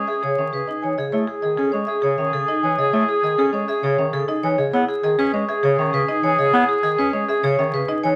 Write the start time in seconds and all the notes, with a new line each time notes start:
Already playing: C#4 G#4 C#5
0.08 G#4 E5
0.23 C#3 G#4 C#5
0.38 D#3 C#4 E5
0.53 C#3 G#4 B4
0.67 D#4 D#5
0.82 E3 C#5 G#5
0.98 C#3 G#4 D#5
1.12 A3 E4 G#4 C#5
1.27 G#4
1.42 D#3 G#4 D#5
1.57 C#4 G#4 A4
1.72 G#3 C#4 C#5
1.87 G#4 E5
2.02 C#3 G#4 C#5
2.18 D#3 C#4 E5
2.33 C#3 G#4 A4
2.48 D#4 D#5
2.63 E3 C#5 G#5
2.78 C#3 G#4 D#5
2.93 A3 E4 C#5
3.08 G#4
3.23 D#3 G#4 D#5
3.38 C#4 G#4 A4
3.53 G#3 C#4 C#5
3.68 G#4 E5
3.83 C#3 G#4 C#5
3.98 D#3 C#4 E5
4.13 C#3 G#4 A4
4.28 D#4 D#5
4.43 E3 C#5 G#5
4.58 C#3 G#4 D#5
4.73 B3 E4 G#4 C#5
4.88 G#4
5.03 D#3 G#4 D#5
5.19 C#4 G#4 B4
5.33 G#3 C#4 C#5
5.49 G#4 E5
5.63 C#3 G#4 C#5
5.78 D#3 C#4 E5
5.93 C#3 G#4 B4
6.08 D#4 D#5
6.23 E3 C#5 G#5
6.39 C#3 G#4 D#5
6.53 B3 E4 C#5
6.68 G#4
6.83 D#3 G#4 D#5
6.98 C#4 G#4 B4
7.13 G#3 C#4 C#5
7.29 G#4 E5
7.44 C#3 G#4 C#5
7.59 D#3 C#4 E5
7.74 C#3 G#4 B4
7.89 D#4 D#5
8.04 E3 C#5 G#5